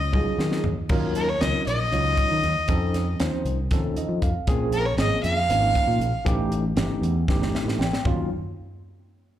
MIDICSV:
0, 0, Header, 1, 5, 480
1, 0, Start_track
1, 0, Tempo, 511117
1, 842, Time_signature, 7, 3, 24, 8
1, 8822, End_track
2, 0, Start_track
2, 0, Title_t, "Violin"
2, 0, Program_c, 0, 40
2, 0, Note_on_c, 0, 75, 90
2, 575, Note_off_c, 0, 75, 0
2, 1091, Note_on_c, 0, 70, 88
2, 1210, Note_on_c, 0, 73, 78
2, 1224, Note_off_c, 0, 70, 0
2, 1322, Note_on_c, 0, 75, 87
2, 1336, Note_off_c, 0, 73, 0
2, 1555, Note_off_c, 0, 75, 0
2, 1564, Note_on_c, 0, 75, 95
2, 2966, Note_off_c, 0, 75, 0
2, 4449, Note_on_c, 0, 70, 93
2, 4558, Note_on_c, 0, 73, 82
2, 4572, Note_off_c, 0, 70, 0
2, 4672, Note_off_c, 0, 73, 0
2, 4681, Note_on_c, 0, 75, 90
2, 4910, Note_off_c, 0, 75, 0
2, 4915, Note_on_c, 0, 77, 110
2, 5850, Note_off_c, 0, 77, 0
2, 8822, End_track
3, 0, Start_track
3, 0, Title_t, "Tine electric piano"
3, 0, Program_c, 1, 4
3, 117, Note_on_c, 1, 54, 75
3, 120, Note_on_c, 1, 61, 65
3, 121, Note_on_c, 1, 65, 63
3, 122, Note_on_c, 1, 63, 66
3, 124, Note_on_c, 1, 68, 81
3, 647, Note_off_c, 1, 54, 0
3, 649, Note_off_c, 1, 61, 0
3, 649, Note_off_c, 1, 63, 0
3, 649, Note_off_c, 1, 65, 0
3, 651, Note_off_c, 1, 68, 0
3, 837, Note_on_c, 1, 54, 91
3, 842, Note_on_c, 1, 61, 79
3, 846, Note_on_c, 1, 65, 79
3, 847, Note_on_c, 1, 70, 94
3, 848, Note_on_c, 1, 63, 78
3, 1191, Note_off_c, 1, 54, 0
3, 1194, Note_off_c, 1, 61, 0
3, 1196, Note_off_c, 1, 65, 0
3, 1197, Note_off_c, 1, 63, 0
3, 1197, Note_off_c, 1, 70, 0
3, 1315, Note_on_c, 1, 54, 61
3, 1318, Note_on_c, 1, 65, 53
3, 1320, Note_on_c, 1, 61, 58
3, 1321, Note_on_c, 1, 63, 54
3, 1326, Note_on_c, 1, 70, 65
3, 1671, Note_off_c, 1, 54, 0
3, 1672, Note_off_c, 1, 65, 0
3, 1673, Note_off_c, 1, 61, 0
3, 1673, Note_off_c, 1, 63, 0
3, 1676, Note_off_c, 1, 70, 0
3, 1797, Note_on_c, 1, 54, 65
3, 1797, Note_on_c, 1, 61, 55
3, 1801, Note_on_c, 1, 63, 59
3, 1809, Note_on_c, 1, 65, 58
3, 1813, Note_on_c, 1, 73, 72
3, 2327, Note_off_c, 1, 54, 0
3, 2327, Note_off_c, 1, 61, 0
3, 2329, Note_off_c, 1, 63, 0
3, 2333, Note_off_c, 1, 65, 0
3, 2335, Note_off_c, 1, 73, 0
3, 2516, Note_on_c, 1, 53, 85
3, 2524, Note_on_c, 1, 60, 81
3, 2525, Note_on_c, 1, 61, 83
3, 2526, Note_on_c, 1, 63, 77
3, 2528, Note_on_c, 1, 69, 102
3, 2871, Note_off_c, 1, 53, 0
3, 2875, Note_off_c, 1, 60, 0
3, 2875, Note_off_c, 1, 61, 0
3, 2876, Note_off_c, 1, 63, 0
3, 2877, Note_off_c, 1, 69, 0
3, 3001, Note_on_c, 1, 53, 73
3, 3008, Note_on_c, 1, 60, 63
3, 3008, Note_on_c, 1, 72, 75
3, 3012, Note_on_c, 1, 61, 69
3, 3014, Note_on_c, 1, 63, 67
3, 3353, Note_off_c, 1, 53, 0
3, 3357, Note_off_c, 1, 60, 0
3, 3357, Note_off_c, 1, 72, 0
3, 3359, Note_off_c, 1, 61, 0
3, 3360, Note_off_c, 1, 63, 0
3, 3483, Note_on_c, 1, 53, 83
3, 3485, Note_on_c, 1, 60, 73
3, 3490, Note_on_c, 1, 61, 71
3, 3492, Note_on_c, 1, 63, 70
3, 3492, Note_on_c, 1, 69, 87
3, 3733, Note_on_c, 1, 75, 62
3, 3951, Note_off_c, 1, 75, 0
3, 3967, Note_on_c, 1, 77, 68
3, 4010, Note_off_c, 1, 53, 0
3, 4011, Note_off_c, 1, 60, 0
3, 4013, Note_off_c, 1, 61, 0
3, 4015, Note_off_c, 1, 63, 0
3, 4015, Note_off_c, 1, 69, 0
3, 4188, Note_off_c, 1, 77, 0
3, 4201, Note_on_c, 1, 53, 90
3, 4202, Note_on_c, 1, 58, 80
3, 4203, Note_on_c, 1, 60, 86
3, 4210, Note_on_c, 1, 61, 85
3, 4211, Note_on_c, 1, 68, 109
3, 4553, Note_off_c, 1, 53, 0
3, 4554, Note_off_c, 1, 58, 0
3, 4554, Note_off_c, 1, 60, 0
3, 4558, Note_off_c, 1, 61, 0
3, 4558, Note_off_c, 1, 68, 0
3, 4677, Note_on_c, 1, 53, 67
3, 4682, Note_on_c, 1, 60, 55
3, 4683, Note_on_c, 1, 58, 60
3, 4684, Note_on_c, 1, 61, 58
3, 4688, Note_on_c, 1, 68, 69
3, 5031, Note_off_c, 1, 53, 0
3, 5034, Note_off_c, 1, 58, 0
3, 5034, Note_off_c, 1, 60, 0
3, 5035, Note_off_c, 1, 61, 0
3, 5037, Note_off_c, 1, 68, 0
3, 5161, Note_on_c, 1, 53, 69
3, 5162, Note_on_c, 1, 58, 64
3, 5163, Note_on_c, 1, 60, 64
3, 5167, Note_on_c, 1, 61, 64
3, 5167, Note_on_c, 1, 63, 69
3, 5689, Note_off_c, 1, 53, 0
3, 5690, Note_off_c, 1, 58, 0
3, 5690, Note_off_c, 1, 60, 0
3, 5692, Note_off_c, 1, 61, 0
3, 5692, Note_off_c, 1, 63, 0
3, 5868, Note_on_c, 1, 52, 92
3, 5869, Note_on_c, 1, 57, 90
3, 5869, Note_on_c, 1, 61, 86
3, 5872, Note_on_c, 1, 63, 81
3, 5877, Note_on_c, 1, 67, 106
3, 6227, Note_off_c, 1, 52, 0
3, 6227, Note_off_c, 1, 57, 0
3, 6227, Note_off_c, 1, 61, 0
3, 6229, Note_off_c, 1, 63, 0
3, 6231, Note_off_c, 1, 67, 0
3, 6353, Note_on_c, 1, 61, 66
3, 6355, Note_on_c, 1, 52, 81
3, 6358, Note_on_c, 1, 57, 68
3, 6358, Note_on_c, 1, 63, 72
3, 6365, Note_on_c, 1, 67, 81
3, 6709, Note_off_c, 1, 61, 0
3, 6710, Note_off_c, 1, 52, 0
3, 6712, Note_off_c, 1, 57, 0
3, 6712, Note_off_c, 1, 63, 0
3, 6715, Note_off_c, 1, 67, 0
3, 6837, Note_on_c, 1, 61, 73
3, 6838, Note_on_c, 1, 57, 75
3, 6839, Note_on_c, 1, 63, 75
3, 6840, Note_on_c, 1, 52, 82
3, 6849, Note_on_c, 1, 67, 92
3, 7091, Note_on_c, 1, 76, 69
3, 7310, Note_off_c, 1, 76, 0
3, 7318, Note_on_c, 1, 79, 68
3, 7367, Note_off_c, 1, 61, 0
3, 7368, Note_off_c, 1, 57, 0
3, 7368, Note_off_c, 1, 63, 0
3, 7369, Note_off_c, 1, 52, 0
3, 7373, Note_off_c, 1, 67, 0
3, 7543, Note_off_c, 1, 79, 0
3, 7568, Note_on_c, 1, 61, 72
3, 7568, Note_on_c, 1, 65, 90
3, 7569, Note_on_c, 1, 54, 80
3, 7569, Note_on_c, 1, 63, 73
3, 7571, Note_on_c, 1, 58, 70
3, 7788, Note_off_c, 1, 61, 0
3, 7789, Note_off_c, 1, 54, 0
3, 7789, Note_off_c, 1, 63, 0
3, 7789, Note_off_c, 1, 65, 0
3, 7790, Note_off_c, 1, 58, 0
3, 8822, End_track
4, 0, Start_track
4, 0, Title_t, "Fingered electric bass"
4, 0, Program_c, 2, 33
4, 0, Note_on_c, 2, 37, 86
4, 255, Note_off_c, 2, 37, 0
4, 359, Note_on_c, 2, 51, 85
4, 573, Note_off_c, 2, 51, 0
4, 599, Note_on_c, 2, 39, 87
4, 707, Note_off_c, 2, 39, 0
4, 843, Note_on_c, 2, 39, 100
4, 1268, Note_off_c, 2, 39, 0
4, 1331, Note_on_c, 2, 37, 98
4, 1433, Note_off_c, 2, 37, 0
4, 1567, Note_on_c, 2, 34, 77
4, 1777, Note_off_c, 2, 34, 0
4, 1808, Note_on_c, 2, 37, 90
4, 2018, Note_off_c, 2, 37, 0
4, 2172, Note_on_c, 2, 51, 77
4, 2274, Note_off_c, 2, 51, 0
4, 2282, Note_on_c, 2, 39, 78
4, 2389, Note_off_c, 2, 39, 0
4, 2523, Note_on_c, 2, 41, 96
4, 2948, Note_off_c, 2, 41, 0
4, 3004, Note_on_c, 2, 39, 102
4, 3110, Note_off_c, 2, 39, 0
4, 3240, Note_on_c, 2, 36, 84
4, 3454, Note_off_c, 2, 36, 0
4, 3487, Note_on_c, 2, 39, 95
4, 3697, Note_off_c, 2, 39, 0
4, 3836, Note_on_c, 2, 53, 80
4, 3945, Note_off_c, 2, 53, 0
4, 3964, Note_on_c, 2, 41, 83
4, 4070, Note_off_c, 2, 41, 0
4, 4201, Note_on_c, 2, 34, 104
4, 4627, Note_off_c, 2, 34, 0
4, 4671, Note_on_c, 2, 32, 99
4, 4782, Note_off_c, 2, 32, 0
4, 4918, Note_on_c, 2, 41, 89
4, 5132, Note_off_c, 2, 41, 0
4, 5156, Note_on_c, 2, 32, 98
4, 5372, Note_off_c, 2, 32, 0
4, 5517, Note_on_c, 2, 46, 84
4, 5621, Note_off_c, 2, 46, 0
4, 5626, Note_on_c, 2, 34, 85
4, 5740, Note_off_c, 2, 34, 0
4, 5885, Note_on_c, 2, 33, 107
4, 6309, Note_off_c, 2, 33, 0
4, 6345, Note_on_c, 2, 31, 108
4, 6459, Note_off_c, 2, 31, 0
4, 6587, Note_on_c, 2, 40, 88
4, 6806, Note_off_c, 2, 40, 0
4, 6839, Note_on_c, 2, 31, 102
4, 7053, Note_off_c, 2, 31, 0
4, 7185, Note_on_c, 2, 45, 89
4, 7299, Note_off_c, 2, 45, 0
4, 7310, Note_on_c, 2, 33, 90
4, 7422, Note_off_c, 2, 33, 0
4, 7558, Note_on_c, 2, 39, 91
4, 7783, Note_off_c, 2, 39, 0
4, 8822, End_track
5, 0, Start_track
5, 0, Title_t, "Drums"
5, 126, Note_on_c, 9, 36, 86
5, 128, Note_on_c, 9, 48, 51
5, 220, Note_off_c, 9, 36, 0
5, 222, Note_off_c, 9, 48, 0
5, 370, Note_on_c, 9, 38, 66
5, 464, Note_off_c, 9, 38, 0
5, 486, Note_on_c, 9, 38, 59
5, 580, Note_off_c, 9, 38, 0
5, 599, Note_on_c, 9, 43, 80
5, 693, Note_off_c, 9, 43, 0
5, 837, Note_on_c, 9, 49, 92
5, 843, Note_on_c, 9, 36, 108
5, 931, Note_off_c, 9, 49, 0
5, 936, Note_off_c, 9, 36, 0
5, 1082, Note_on_c, 9, 42, 61
5, 1176, Note_off_c, 9, 42, 0
5, 1323, Note_on_c, 9, 42, 75
5, 1328, Note_on_c, 9, 38, 96
5, 1417, Note_off_c, 9, 42, 0
5, 1422, Note_off_c, 9, 38, 0
5, 1571, Note_on_c, 9, 42, 58
5, 1665, Note_off_c, 9, 42, 0
5, 1807, Note_on_c, 9, 42, 70
5, 1901, Note_off_c, 9, 42, 0
5, 2039, Note_on_c, 9, 42, 58
5, 2042, Note_on_c, 9, 36, 64
5, 2133, Note_off_c, 9, 42, 0
5, 2136, Note_off_c, 9, 36, 0
5, 2284, Note_on_c, 9, 42, 52
5, 2378, Note_off_c, 9, 42, 0
5, 2515, Note_on_c, 9, 42, 79
5, 2523, Note_on_c, 9, 36, 106
5, 2609, Note_off_c, 9, 42, 0
5, 2617, Note_off_c, 9, 36, 0
5, 2764, Note_on_c, 9, 42, 60
5, 2769, Note_on_c, 9, 38, 35
5, 2858, Note_off_c, 9, 42, 0
5, 2863, Note_off_c, 9, 38, 0
5, 3002, Note_on_c, 9, 42, 75
5, 3007, Note_on_c, 9, 38, 101
5, 3096, Note_off_c, 9, 42, 0
5, 3101, Note_off_c, 9, 38, 0
5, 3245, Note_on_c, 9, 42, 58
5, 3339, Note_off_c, 9, 42, 0
5, 3482, Note_on_c, 9, 42, 79
5, 3486, Note_on_c, 9, 36, 95
5, 3486, Note_on_c, 9, 38, 30
5, 3576, Note_off_c, 9, 42, 0
5, 3580, Note_off_c, 9, 36, 0
5, 3580, Note_off_c, 9, 38, 0
5, 3724, Note_on_c, 9, 42, 65
5, 3818, Note_off_c, 9, 42, 0
5, 3963, Note_on_c, 9, 42, 58
5, 3965, Note_on_c, 9, 36, 74
5, 4057, Note_off_c, 9, 42, 0
5, 4059, Note_off_c, 9, 36, 0
5, 4200, Note_on_c, 9, 42, 89
5, 4204, Note_on_c, 9, 36, 111
5, 4294, Note_off_c, 9, 42, 0
5, 4298, Note_off_c, 9, 36, 0
5, 4436, Note_on_c, 9, 42, 67
5, 4530, Note_off_c, 9, 42, 0
5, 4676, Note_on_c, 9, 42, 86
5, 4681, Note_on_c, 9, 38, 107
5, 4770, Note_off_c, 9, 42, 0
5, 4775, Note_off_c, 9, 38, 0
5, 4920, Note_on_c, 9, 42, 65
5, 5014, Note_off_c, 9, 42, 0
5, 5163, Note_on_c, 9, 42, 85
5, 5257, Note_off_c, 9, 42, 0
5, 5403, Note_on_c, 9, 36, 74
5, 5405, Note_on_c, 9, 42, 63
5, 5497, Note_off_c, 9, 36, 0
5, 5499, Note_off_c, 9, 42, 0
5, 5647, Note_on_c, 9, 42, 59
5, 5741, Note_off_c, 9, 42, 0
5, 5882, Note_on_c, 9, 36, 107
5, 5882, Note_on_c, 9, 42, 82
5, 5976, Note_off_c, 9, 36, 0
5, 5976, Note_off_c, 9, 42, 0
5, 6121, Note_on_c, 9, 42, 60
5, 6215, Note_off_c, 9, 42, 0
5, 6355, Note_on_c, 9, 42, 78
5, 6359, Note_on_c, 9, 38, 111
5, 6449, Note_off_c, 9, 42, 0
5, 6453, Note_off_c, 9, 38, 0
5, 6605, Note_on_c, 9, 42, 58
5, 6699, Note_off_c, 9, 42, 0
5, 6840, Note_on_c, 9, 36, 108
5, 6845, Note_on_c, 9, 38, 61
5, 6934, Note_off_c, 9, 36, 0
5, 6939, Note_off_c, 9, 38, 0
5, 6971, Note_on_c, 9, 38, 58
5, 7065, Note_off_c, 9, 38, 0
5, 7090, Note_on_c, 9, 38, 78
5, 7184, Note_off_c, 9, 38, 0
5, 7216, Note_on_c, 9, 38, 67
5, 7310, Note_off_c, 9, 38, 0
5, 7335, Note_on_c, 9, 38, 89
5, 7429, Note_off_c, 9, 38, 0
5, 7451, Note_on_c, 9, 38, 84
5, 7544, Note_off_c, 9, 38, 0
5, 7562, Note_on_c, 9, 36, 98
5, 7565, Note_on_c, 9, 43, 106
5, 7656, Note_off_c, 9, 36, 0
5, 7659, Note_off_c, 9, 43, 0
5, 8822, End_track
0, 0, End_of_file